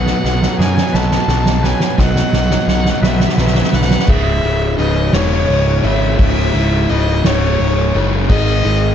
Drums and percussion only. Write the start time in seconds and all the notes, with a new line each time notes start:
0.06 snare
0.25 snare
0.42 snare
0.60 snare
0.77 snare
0.94 snare
1.11 snare
1.28 snare
1.46 snare
1.64 snare
1.80 snare
1.98 kick, snare
2.16 snare
2.33 snare
2.50 snare
2.68 snare
2.85 snare
3.03 snare
3.20 snare
3.29 snare
3.38 snare
3.47 snare
3.55 snare
3.63 snare
3.73 snare
3.82 snare
3.90 snare
3.99 snare
4.08 kick, crash
4.43 ride
4.77 ride
5.13 snare, ride
5.48 ride
5.84 ride
6.19 kick, ride
6.55 ride
6.90 ride
7.24 snare, ride
7.60 ride
7.94 ride
8.30 kick, crash
8.66 ride